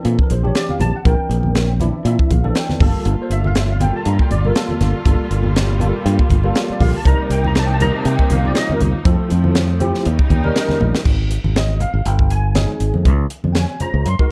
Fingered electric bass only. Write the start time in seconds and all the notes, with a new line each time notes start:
0.05 A#2
0.30 A#1
0.69 muted fingered electric bass stroke
0.80 A#1
1.05 A#1
1.19 muted fingered electric bass stroke
1.29 A#1
2.05 A#2
2.31 A#1
2.70 muted fingered electric bass stroke
2.81 G1
3.06 G1
3.30 G1
4.06 G2
4.31 G1
4.68 muted fingered electric bass stroke
4.81 G1
5.05 G1
5.31 G1
6.06 G2
6.30 G1
6.70 muted fingered electric bass stroke
6.81 A#1
7.05 C2
7.19 muted fingered electric bass stroke
7.30 C2
8.05 C3
8.30 C2
8.69 muted fingered electric bass stroke
8.81 C2
9.05 F2
9.20 muted fingered electric bass stroke
9.31 F2
10.06 D#2
10.30 D#2
10.70 muted fingered electric bass stroke
10.81 A#1
11.05 G#1
11.44 G#1
11.94 G#1
12.06 G1
12.80 G#1
12.95 F2
13.05 C#2
13.44 F2
13.94 C#2
14.05 F#2